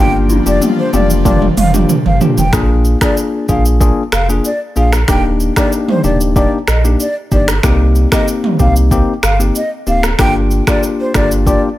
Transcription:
Already playing: sub bass G1, analog synth pad F3 A#3 D4 G4, tine electric piano A#3 D4 F4
0.00 tine electric piano G4, flute G5
0.29 high tom, shaker
0.46 sub bass F1, tine electric piano A#3 D4 F4 G4, flute D5, shaker
0.62 mid tom, shaker
0.79 flute C5
0.93 sub bass F1, tine electric piano A#3 D4 F4 G4, flute D5, mid tom, shaker
1.10 shaker
1.25 tine electric piano A#3 D4 F4 G4, flute D5, kick, mid tom, shaker
1.42 mid tom
1.57 sub bass F1, flute F5, mid tom, open hi-hat, shaker
1.74 tine electric piano A#3 D4 F4 G4, mid tom, shaker
1.89 floor tom, shaker
2.06 sub bass G1, flute F5, floor tom
2.21 tine electric piano A#3 D4 F4 G4, floor tom, shaker
2.38 sub bass F1, flute G5, floor tom, shaker
2.53 sub bass A#1, tine electric piano A#3 D4 F4 G#4, finger snap, kick, cross-stick, shaker
2.85 shaker
3.01 tine electric piano A#3 D4 F4 G#4, flute D5, finger snap, kick, cross-stick, shaker
3.17 shaker
3.49 sub bass A#1, tine electric piano A#3 D4 F4 G#4, flute F5, kick, shaker
3.65 shaker
3.81 tine electric piano A#3 D4 F4 G#4, kick, shaker
4.12 sub bass F1, flute F5, finger snap, cross-stick, shaker
4.29 tine electric piano A#3 D4 F4 G#4, shaker
4.45 flute D5, shaker
4.76 sub bass A#1, tine electric piano A#3 D4 F4 G#4, flute F5, shaker
4.93 finger snap, cross-stick, shaker
5.08 sub bass D#1, tine electric piano A#3 D4 D#4 G4, flute G5, finger snap, kick, cross-stick, shaker
5.40 shaker
5.56 tine electric piano A#3 D4 D#4 G4, flute D5, finger snap, kick, cross-stick, shaker
5.72 shaker
5.88 flute C5, mid tom
6.04 sub bass D#1, tine electric piano A#3 D4 D#4 G4, flute D5, shaker
6.21 shaker
6.36 tine electric piano A#3 D4 D#4 G4, flute D5, kick, shaker
6.68 sub bass A#1, flute D#5, finger snap, cross-stick, shaker
6.84 tine electric piano A#3 D4 D#4 G4, shaker
7.00 flute D5, shaker
7.31 sub bass G1, tine electric piano A#3 D4 D#4 G4, flute D5, kick, shaker
7.48 finger snap, cross-stick, shaker
7.63 sub bass C2, tine electric piano A#3 C4 D#4 G4, finger snap, kick, cross-stick, shaker
7.95 shaker
8.12 tine electric piano A#3 C4 D#4 G4, flute D#5, finger snap, kick, cross-stick, shaker
8.28 shaker
8.44 mid tom
8.59 sub bass C2, tine electric piano A#3 C4 D#4 G4, flute F5, kick, shaker
8.76 shaker
8.91 tine electric piano A#3 C4 D#4 G4, kick, shaker
9.23 sub bass G1, flute F5, finger snap, cross-stick, shaker
9.40 tine electric piano A#3 C4 D#4 G4, shaker
9.55 flute D#5, shaker
9.87 sub bass D1, tine electric piano A#3 C4 D#4 G4, flute F5, shaker
10.03 finger snap, cross-stick, shaker
10.19 sub bass G1, tine electric piano A#3 D4 F4 G4, flute G5, finger snap, kick, cross-stick, shaker
10.51 shaker
10.67 tine electric piano A#3 D4 F4 G4, flute D5, finger snap, kick, cross-stick, shaker
10.83 shaker
11.00 flute C5
11.14 sub bass G1, tine electric piano A#3 D4 F4 G4, flute D5, finger snap, kick, cross-stick, shaker
11.31 shaker
11.46 tine electric piano A#3 D4 F4 G4, flute D5, kick, shaker

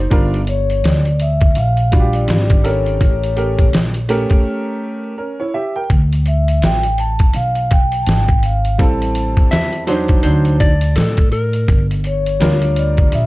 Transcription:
Already playing: grand piano D#4 C5
0.10 upright bass G1, grand piano G3 D4 F4 A#4, kick, closed hi-hat
0.34 closed hi-hat
0.47 vibraphone C#5, closed hi-hat
0.70 closed hi-hat
0.84 upright bass D2, vibraphone D5, snare, closed hi-hat
1.05 closed hi-hat
1.20 vibraphone E5, closed hi-hat
1.41 kick, closed hi-hat
1.55 upright bass A#1, vibraphone F5, closed hi-hat
1.77 closed hi-hat
1.92 grand piano G3 D4 F4 F#4, kick, closed hi-hat
2.00 grand piano G4
2.13 vibraphone D5, closed hi-hat
2.28 upright bass G#1, snare, closed hi-hat
2.50 kick, closed hi-hat
2.64 grand piano C#4 G4 A4 A#4, vibraphone C#5, closed hi-hat
2.86 closed hi-hat
3.01 upright bass A1, kick, closed hi-hat
3.23 closed hi-hat
3.36 grand piano A3 C#4 G4 A#4, closed hi-hat
3.59 kick, closed hi-hat
3.73 upright bass A#1, snare, closed hi-hat
3.94 closed hi-hat
4.09 grand piano A3 C#4 G4 A#4, closed hi-hat
4.30 muted upright bass stroke, kick, closed hi-hat
5.18 grand piano C#4 A#4
5.40 grand piano E4 C#5
5.54 grand piano G4 E5
5.76 grand piano A#4 G5
5.90 upright bass D2, kick, closed hi-hat
6.13 closed hi-hat
6.26 vibraphone E5, closed hi-hat
6.48 closed hi-hat
6.62 upright bass A1, vibraphone G5, snare, closed hi-hat
6.83 closed hi-hat
6.98 vibraphone A5, closed hi-hat
7.19 kick, closed hi-hat
7.33 upright bass B1, vibraphone F5, closed hi-hat
7.55 closed hi-hat
7.71 vibraphone G5, kick, closed hi-hat
7.92 closed hi-hat
8.03 vibraphone A5, closed hi-hat
8.07 upright bass G#1, snare
8.28 kick, closed hi-hat
8.43 vibraphone F5, closed hi-hat
8.65 closed hi-hat
8.78 upright bass A1, grand piano G3 C4 E4 A4, vibraphone A5, kick, closed hi-hat
9.02 closed hi-hat
9.15 closed hi-hat
9.37 kick, closed hi-hat
9.51 upright bass E2, clean electric guitar E5, snare, closed hi-hat
9.73 closed hi-hat
9.87 grand piano F#3 D4 D#4 C5, clean electric guitar C5, snare, closed hi-hat
10.08 kick, closed hi-hat
10.23 upright bass D2, grand piano F#3 D4 D#4 C5, clean electric guitar C5, closed hi-hat
10.45 closed hi-hat
10.60 clean electric guitar D5, kick, closed hi-hat
10.81 closed hi-hat
10.96 upright bass A2, clean electric guitar A4, snare, closed hi-hat
11.17 kick, closed hi-hat
11.32 clean electric guitar A#4, closed hi-hat
11.53 closed hi-hat
11.68 upright bass G1, kick, closed hi-hat
11.91 closed hi-hat
12.04 vibraphone C#5, closed hi-hat
12.26 closed hi-hat
12.40 upright bass D2, grand piano G3 D4 F4 A#4, snare, closed hi-hat
12.62 closed hi-hat
12.76 vibraphone D5, closed hi-hat
12.97 kick, closed hi-hat
13.12 upright bass A#1, vibraphone E5, closed hi-hat

